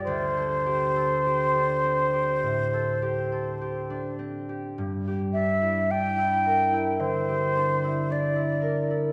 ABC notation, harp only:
X:1
M:4/4
L:1/16
Q:1/4=53
K:Gm
V:1 name="Harp"
[D,,GAc] A G A G D C G A,, A G A G D C G | G,, G D =E D E B E D, G D E D E B E |]